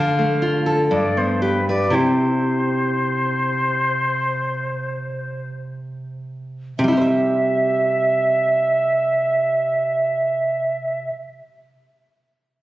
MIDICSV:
0, 0, Header, 1, 3, 480
1, 0, Start_track
1, 0, Key_signature, 0, "major"
1, 0, Tempo, 974026
1, 446, Tempo, 1047120
1, 926, Tempo, 1088929
1, 927, Time_signature, 4, 2, 24, 8
1, 1406, Tempo, 1171875
1, 1886, Tempo, 1282051
1, 5035, End_track
2, 0, Start_track
2, 0, Title_t, "Flute"
2, 0, Program_c, 0, 73
2, 0, Note_on_c, 0, 77, 93
2, 290, Note_off_c, 0, 77, 0
2, 444, Note_on_c, 0, 74, 65
2, 571, Note_on_c, 0, 72, 55
2, 578, Note_off_c, 0, 74, 0
2, 681, Note_on_c, 0, 71, 53
2, 688, Note_off_c, 0, 72, 0
2, 803, Note_off_c, 0, 71, 0
2, 806, Note_on_c, 0, 74, 57
2, 925, Note_on_c, 0, 72, 61
2, 932, Note_off_c, 0, 74, 0
2, 2358, Note_off_c, 0, 72, 0
2, 2851, Note_on_c, 0, 76, 53
2, 4462, Note_off_c, 0, 76, 0
2, 5035, End_track
3, 0, Start_track
3, 0, Title_t, "Nylon-string guitar"
3, 0, Program_c, 1, 24
3, 0, Note_on_c, 1, 50, 65
3, 92, Note_on_c, 1, 57, 45
3, 207, Note_on_c, 1, 65, 45
3, 278, Note_off_c, 1, 57, 0
3, 326, Note_on_c, 1, 69, 45
3, 400, Note_off_c, 1, 65, 0
3, 434, Note_off_c, 1, 50, 0
3, 448, Note_off_c, 1, 69, 0
3, 448, Note_on_c, 1, 43, 55
3, 568, Note_on_c, 1, 59, 35
3, 682, Note_on_c, 1, 67, 41
3, 758, Note_off_c, 1, 59, 0
3, 806, Note_on_c, 1, 71, 39
3, 877, Note_off_c, 1, 67, 0
3, 902, Note_off_c, 1, 43, 0
3, 904, Note_on_c, 1, 48, 48
3, 910, Note_on_c, 1, 64, 38
3, 918, Note_on_c, 1, 67, 39
3, 927, Note_off_c, 1, 71, 0
3, 2828, Note_off_c, 1, 48, 0
3, 2830, Note_off_c, 1, 64, 0
3, 2834, Note_off_c, 1, 67, 0
3, 2850, Note_on_c, 1, 48, 45
3, 2869, Note_on_c, 1, 55, 38
3, 2885, Note_on_c, 1, 64, 36
3, 2900, Note_on_c, 1, 67, 39
3, 2917, Note_off_c, 1, 64, 0
3, 2918, Note_on_c, 1, 72, 40
3, 2934, Note_off_c, 1, 72, 0
3, 2935, Note_on_c, 1, 76, 36
3, 4462, Note_off_c, 1, 48, 0
3, 4480, Note_off_c, 1, 55, 0
3, 4512, Note_off_c, 1, 67, 0
3, 4547, Note_off_c, 1, 76, 0
3, 5035, End_track
0, 0, End_of_file